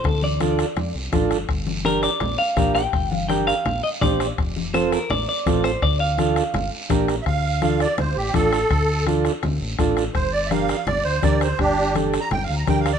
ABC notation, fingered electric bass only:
X:1
M:4/4
L:1/8
Q:1/4=166
K:Gm
V:1 name="Fingered electric bass" clef=bass
D,,4 F,, C,, A,,, G,,, | G,,,4 B,,, z B,,,2 | G,,,4 B,,, z B,,,2 | F,,,4 A,,, z A,,,2 |
D,,4 G,,, z B,,,2 | D,,4 D,, A,,, A,,,2 | D,,4 D,, A,,, A,,,2 | G,,,4 G,,, D,, D,,2 |
G,,,4 G,,, D,, D,,2 |]